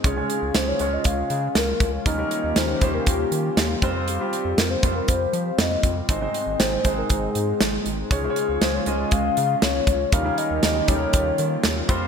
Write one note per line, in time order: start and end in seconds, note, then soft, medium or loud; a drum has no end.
0.00 2.02 G#3 medium
0.00 0.13 G#3 medium
0.04 0.22 C#2 loud
0.04 0.76 C#3 medium
0.04 0.13 C#4 medium
0.04 3.79 C#4 medium
0.04 0.13 F4 medium
0.04 6.06 F4 medium
0.04 0.57 G#4 medium
0.04 0.14 C#5 medium
0.04 kick loud
0.04 closed hi-hat medium
0.16 0.62 G#3 medium
0.16 0.62 C#4 medium
0.16 0.63 F4 medium
0.16 0.63 C#5 medium
0.30 closed hi-hat medium
0.42 0.51 C#2 medium
0.54 0.73 C#2 medium
0.54 0.69 C5 medium
0.54 snare medium
0.54 closed hi-hat medium
0.68 0.95 C#5 loud
0.79 0.98 C#2 medium
0.79 1.53 G#3 medium
0.79 1.53 C#4 medium
0.79 1.53 F4 medium
0.79 1.53 C#5 medium
0.79 closed hi-hat medium
0.93 1.05 D#5 medium
1.04 1.23 C#2 medium
1.04 1.52 F5 loud
1.04 kick medium
1.04 closed hi-hat medium
1.30 1.48 C#3 medium
1.30 closed hi-hat medium
1.55 1.73 C#2 loud
1.55 1.91 A#4 loud
1.55 snare loud
1.55 closed hi-hat medium
1.80 1.99 C#2 medium
1.80 kick medium
1.80 closed hi-hat medium
2.05 2.24 D#2 loud
2.05 3.81 D#3 medium
2.05 2.77 D#3 medium
2.05 2.15 G3 medium
2.05 3.81 A#3 medium
2.05 2.15 C#4 medium
2.05 2.15 D#4 medium
2.05 3.81 G4 medium
2.05 2.15 A#4 medium
2.05 2.58 D#5 loud
2.05 kick loud
2.05 closed hi-hat medium
2.18 2.64 G3 medium
2.18 2.64 C#4 medium
2.18 2.64 D#4 medium
2.18 2.64 A#4 medium
2.31 closed hi-hat medium
2.44 2.53 D#2 medium
2.56 2.74 D#2 medium
2.56 2.94 C5 medium
2.56 snare medium
2.56 closed hi-hat medium
2.81 3.00 D#2 medium
2.81 3.54 G3 medium
2.81 3.55 C#4 medium
2.81 3.55 D#4 medium
2.81 3.55 C5 medium
2.81 kick medium
2.81 closed hi-hat medium
2.94 3.06 A#4 medium
3.07 3.25 D#2 loud
3.07 3.79 G4 medium
3.07 kick medium
3.07 closed hi-hat medium
3.32 3.50 D#3 medium
3.32 closed hi-hat medium
3.57 3.75 D#2 medium
3.57 snare medium
3.57 closed hi-hat medium
3.82 4.19 F2 medium
3.82 4.13 G3 medium
3.82 6.07 G3 medium
3.82 4.13 C4 medium
3.82 8.07 C4 medium
3.82 4.13 F4 medium
3.82 4.13 C5 medium
3.82 kick medium
3.82 closed hi-hat medium
4.08 4.60 G4 medium
4.08 closed hi-hat medium
4.20 4.66 G3 medium
4.20 4.66 C4 medium
4.20 4.66 F4 medium
4.20 4.66 G4 medium
4.33 closed hi-hat medium
4.45 4.54 F2 loud
4.57 4.76 F2 loud
4.57 4.72 A#4 medium
4.57 snare loud
4.57 closed hi-hat medium
4.70 4.97 C5 medium
4.83 5.01 F2 medium
4.83 5.56 G3 medium
4.83 5.56 C4 medium
4.83 5.56 F4 medium
4.83 5.57 C5 medium
4.83 kick medium
4.83 closed hi-hat medium
4.96 5.10 A#4 medium
5.08 5.27 F2 loud
5.08 5.60 C5 loud
5.08 kick medium
5.08 closed hi-hat medium
5.33 5.51 F3 loud
5.33 closed hi-hat medium
5.58 5.77 F2 loud
5.58 5.96 D#5 loud
5.58 snare loud
5.58 closed hi-hat medium
5.83 6.02 F2 medium
5.83 kick medium
5.83 closed hi-hat medium
6.08 6.27 G#1 loud
6.08 6.81 G#2 medium
6.08 10.08 G#3 medium
6.08 6.18 G#3 medium
6.08 6.18 C4 medium
6.08 8.08 D#4 medium
6.08 6.18 D#4 medium
6.08 6.19 C5 medium
6.08 6.61 D#5 loud
6.08 kick loud
6.08 closed hi-hat medium
6.21 6.67 G#3 medium
6.21 6.67 C4 medium
6.21 6.67 D#4 medium
6.21 6.68 C5 medium
6.34 closed hi-hat medium
6.47 6.56 G#1 medium
6.60 6.78 G#1 medium
6.60 6.99 C5 medium
6.60 snare loud
6.60 closed hi-hat medium
6.84 7.03 G#1 medium
6.84 7.58 G#3 medium
6.84 7.58 C4 medium
6.84 7.58 D#4 medium
6.84 7.58 C5 medium
6.84 kick medium
6.84 closed hi-hat medium
6.98 7.12 A#4 medium
7.10 7.28 G#1 loud
7.10 7.86 G#4 medium
7.10 kick medium
7.10 closed hi-hat medium
7.35 7.53 G#2 medium
7.35 closed hi-hat medium
7.61 7.79 G#1 medium
7.61 snare loud
7.61 closed hi-hat medium
7.86 8.04 G#1 medium
7.86 closed hi-hat medium
8.11 8.29 C#2 loud
8.11 8.83 C#3 medium
8.11 8.20 G#3 medium
8.11 11.85 C#4 medium
8.11 8.20 C#4 medium
8.11 10.10 F4 medium
8.11 8.20 F4 medium
8.11 8.63 G#4 medium
8.11 8.20 C#5 medium
8.11 kick loud
8.11 closed hi-hat medium
8.23 8.69 G#3 medium
8.23 8.69 C#4 medium
8.23 8.69 F4 medium
8.23 8.30 C5 medium
8.30 8.72 C#5 medium
8.36 closed hi-hat medium
8.49 8.58 C#2 medium
8.61 8.80 C#2 medium
8.61 8.76 C5 medium
8.61 snare medium
8.61 closed hi-hat medium
8.74 9.01 C#5 medium
8.86 9.05 C#2 medium
8.86 9.59 G#3 medium
8.86 9.60 C#4 medium
8.86 9.60 F4 medium
8.86 9.60 D#5 medium
8.86 closed hi-hat medium
8.99 9.13 D#5 medium
9.11 9.30 C#2 loud
9.11 9.63 F5 loud
9.11 kick medium
9.11 closed hi-hat medium
9.37 9.55 C#3 loud
9.37 closed hi-hat medium
9.62 9.80 C#2 loud
9.62 10.12 C#5 loud
9.62 snare loud
9.62 closed hi-hat medium
9.87 10.05 C#2 medium
9.87 kick medium
9.87 closed hi-hat medium
10.12 10.31 D#2 loud
10.12 11.87 D#3 medium
10.12 10.84 D#3 medium
10.12 10.22 G3 medium
10.12 11.87 A#3 medium
10.12 10.22 C#4 medium
10.12 10.22 D#4 medium
10.12 12.07 F4 medium
10.12 11.87 G4 medium
10.12 10.22 A#4 medium
10.12 10.39 F5 loud
10.12 kick loud
10.12 closed hi-hat medium
10.24 10.70 G3 medium
10.24 10.71 C#4 medium
10.24 10.71 D#4 medium
10.24 10.71 A#4 medium
10.38 10.90 D#5 loud
10.38 closed hi-hat medium
10.51 10.60 D#2 medium
10.63 10.81 D#2 loud
10.63 snare loud
10.63 closed hi-hat medium
10.88 11.07 D#2 medium
10.88 11.61 G3 medium
10.88 11.61 C#4 medium
10.88 11.61 D#4 medium
10.88 10.95 A4 medium
10.88 11.89 C#5 loud
10.88 kick medium
10.88 closed hi-hat medium
10.95 11.65 A#4 medium
11.13 11.32 D#2 loud
11.13 kick medium
11.13 closed hi-hat medium
11.38 11.57 D#3 medium
11.38 closed hi-hat medium
11.63 11.82 D#2 medium
11.63 snare loud
11.63 closed hi-hat medium
11.88 12.07 F2 medium
11.88 12.07 G3 medium
11.88 12.07 C4 medium
11.88 12.07 F4 medium
11.88 12.07 C5 medium
11.88 kick loud
11.88 closed hi-hat medium